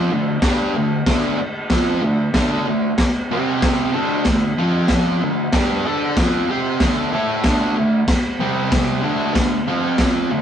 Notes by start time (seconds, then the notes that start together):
Already playing: F4
0.11 D3 A3
0.42 G3 D4 G4, kick, snare, crash
0.76 D3 A3
1.06 D3 A3 D4, kick, snare, crash
1.39 muted distorted electric guitar stroke
1.70 F3 C4 F4, kick, snare, crash
2.02 D3 A3
2.34 D3 A3 D4, kick, snare, crash
2.67 D3 A3
2.98 kick, snare, crash
3.31 C3 G3 C4
3.62 kick, snare, crash
3.93 D3 A3 D4
4.25 D3 A3, kick, snare, crash
4.58 F3 C4 F4
4.88 kick, snare, crash
5.23 D3 A3
5.52 G3 D4 G4, kick, snare, crash
5.86 D4 A4 D5
6.17 F3 C4 F4, kick, snare, crash
6.49 C4 G4 C5
6.80 D3 A3 D4, kick, snare, crash
7.12 A3 E4 A4
7.44 D3 A3 D4, kick, snare, crash
7.78 D3 A3
8.08 kick, snare, crash
8.40 C3 G3 C4
8.72 kick, snare, crash
9.02 D3 A3 D4
9.33 D3 A3, kick, snare, crash
9.67 F3 C4 F4
9.98 kick, snare, crash
10.32 D3 A3